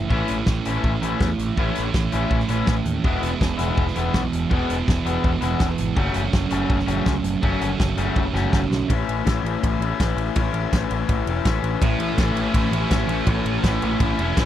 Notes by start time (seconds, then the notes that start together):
Already playing: A3 C#4 E4
0.09 A1 A2 E3 A3 C#4 E4, kick
0.28 A1, closed hi-hat
0.46 A1, kick, snare
0.65 A1 E3 A3 C#4 E4, closed hi-hat
0.84 A1, kick
1.02 A1 E3 A3 C#4 E4, closed hi-hat
1.20 E2, kick, snare
1.38 A1, closed hi-hat
1.55 A1 A2 E3 A3, kick
1.60 C#4 E4
1.75 A1, closed hi-hat
1.94 A1, kick, snare
2.12 A1 E3 A3 C#4 E4, closed hi-hat
2.31 A1, kick
2.40 snare
2.49 A1 E3 A3 C#4 E4, closed hi-hat
2.67 A1, kick, snare
2.85 D#2, closed hi-hat
3.03 E1 E2 B2 E3 G#3 B3 E4, kick
3.22 E1, closed hi-hat
3.41 E1, kick, snare
3.58 E1 E3 G#3 B3 E4, closed hi-hat
3.77 E1, kick
3.88 snare
3.96 E1 E3 G#3 B3 E4, closed hi-hat
4.14 B1, kick, snare
4.33 E1, closed hi-hat
4.50 E1 E2 B2 E3 G#3 B3 E4, kick
4.70 E1, closed hi-hat
4.88 E1, kick, snare
5.05 E1 E3 G#3 B3 E4, closed hi-hat
5.24 E1, kick
5.41 E1 E3 G#3 B3 E4, closed hi-hat
5.60 E1, kick, snare
5.78 G#1, closed hi-hat
5.95 F#1 F#2 C#3 F#3 A3 C#4 F#4, kick
6.14 F#1, closed hi-hat
6.33 F#1, kick, snare
6.50 F#1 C#3 F#3 A3 C#4, closed hi-hat
6.70 F#1, kick
6.79 snare
6.87 F#1 C#3 F#3 A3 C#4, closed hi-hat
7.06 C#2, kick, snare
7.23 F#1, closed hi-hat
7.42 F#1 F#2 C#3 F#3 A3 C#4 F#4, kick
7.61 F#1, closed hi-hat
7.80 F#1, kick, snare
7.97 F#1 C#3 F#3 A3 C#4, closed hi-hat
8.16 F#1, kick, high tom
8.34 F#1 C#3 F#3 A3 C#4, snare
8.53 F#1, kick, snare
8.70 B1, snare
8.89 A1 A2 E3 A3 C#4 E4, kick, ride
9.08 A1, ride
9.26 A1 A2 E3 A3 C#4 E4, kick, snare, ride
9.43 A1 C#4 E4, ride
9.47 A3
9.63 A1, kick, ride
9.79 A1 C#4 E4, ride
9.83 A3
10.00 A1 E3 A3 C#4 E4, kick, snare, ride
10.16 A1, ride
10.36 A1 A2 E3 A3 C#4 E4, kick, ride
10.53 A1, ride
10.72 A1 A2 E3 A3 C#4 E4, kick, snare, ride
10.90 A1 A3 C#4 E4, ride
11.09 A1, kick, ride
11.27 E1 A3 C#4 E4, ride
11.45 A1 E3 A3 C#4 E4, kick, snare, ride
11.63 A1, ride
11.82 A1 A2 E3 A3 C#4 E4, kick, ride
11.99 A1 A3, ride
12.17 A1 A2 E3 A3 C#4 E4, kick, snare, ride
12.33 A1 E4, ride
12.37 A3 C#4
12.53 A1 E4, kick, ride
12.71 A1 A3 C#4 E4, ride
12.90 A1 E3 A3 C#4 E4, kick, snare, ride
13.08 A1 A3, ride
13.26 A1 A2 E3 A3 C#4 E4, kick, ride
13.45 A1 A3, ride
13.64 A1 A2 E3 A3 C#4 E4, kick, snare, ride
13.82 A1 A3 C#4 E4, ride
14.00 A1 E4, kick, ride
14.19 E1 A3 C#4 E4, ride
14.37 A1 E3 A3 C#4 E4, kick, snare, ride